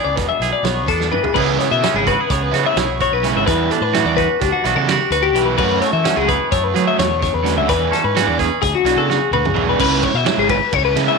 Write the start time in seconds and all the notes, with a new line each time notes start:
Already playing: E3 B3 D4 G#4
0.05 C#2 D5
0.16 E1 B2 B4, kick, snare, closed hi-hat
0.29 E5
0.40 B1 G#4, snare, closed hi-hat
0.53 D5
0.63 B1 B3 C#5, snare, closed hi-hat
0.88 E2 D4 A4, kick, closed hi-hat
1.00 snare
1.12 E3 B4, mid tom
1.23 G#4, floor tom
1.34 C#2 C#3 E3 G#3 B3 C#4 E4 G#4 B4, kick, crash
1.59 B3 C#5, snare, closed hi-hat
1.71 B2 E5
1.81 C#3 G#3 C#4 E4, snare, closed hi-hat
1.94 G#1 E4 G#4
2.07 F#4 B4, kick, closed hi-hat
2.20 G#4
2.30 C#2 B3 C#5, kick, closed hi-hat
2.43 B4
2.52 C#3 G#3 C#4 E4 F#4, snare, closed hi-hat
2.66 G#4 E5
2.76 B1 E4 C#5, snare, closed hi-hat
3.01 F#4 C#5, kick, closed hi-hat
3.12 B1 B4
3.24 C#3 G#3 C#4 E4, closed hi-hat
3.36 G#1 E5
3.47 E2 E3 G3 B3 E4 B4, kick, closed hi-hat
3.71 D4 A4, closed hi-hat
3.81 A2 B4
3.93 E3 G3 B3 E4 F#4, snare, closed hi-hat
4.05 E2 D5
4.17 F#4 B4, kick, closed hi-hat
4.41 D2 D4 G4, kick, snare, closed hi-hat
4.52 F#4
4.64 B1 E3 G3 B3 E4 F#4, closed hi-hat
4.76 C#3 A4
4.88 F#4 G4, snare, closed hi-hat
5.10 D2 F#4 B4, closed hi-hat
5.23 G4
5.35 B1 E3 G3 B3 E4, closed hi-hat
5.46 B4
5.58 F#2 F#3 A3 C#4 F#4 B4, kick, crash
5.81 A3 C#5, closed hi-hat
5.93 E3 E5
6.04 F#3 A3 C#4 F#4, snare, closed hi-hat
6.16 C#2 E4 G#4
6.28 G#4 B4, kick, closed hi-hat
6.52 F#2 A3 C#5, kick, closed hi-hat
6.64 B4
6.75 F#3 A3 C#4 F#4 G#4, closed hi-hat
6.87 E5
6.98 E2 B2 C#5, snare, closed hi-hat
7.20 C#3 C#5, kick, snare, closed hi-hat
7.34 E2 B4
7.43 D3 F#3 A3 C#4 F#4, closed hi-hat
7.57 C#2 E5
7.67 E2 E3 B3 D4 G#4 B4, kick, closed hi-hat
7.91 C#4 A4, snare, closed hi-hat
8.04 G#2 B4
8.15 E3 B3 D4 F#4 G#4, snare, closed hi-hat
8.27 E2 D5
8.39 G#4 B4, kick, closed hi-hat
8.62 D2 G#4, kick, closed hi-hat
8.75 F#4
8.84 B1 E3 B3 D4 F#4 G#4, closed hi-hat
8.96 C#3 A4
9.10 F#4 G#4, snare
9.31 D2 F#4 B4, high tom
9.45 G#4, mid tom
9.54 B1 E3 B3 D4 G#4, mid tom
9.69 B4
9.79 C#2 C#3 G#3 C#4 E4 B4, kick, crash
10.03 C#5, kick, ride
10.14 B2 E5
10.25 C#3 G#3 C#4 E4, snare, ride
10.38 G#1 G#4
10.49 B4, kick, ride
10.72 C#2 C#5, kick, ride
10.85 B4
10.96 C#3 G#3 C#4 E4, snare, ride
11.08 E5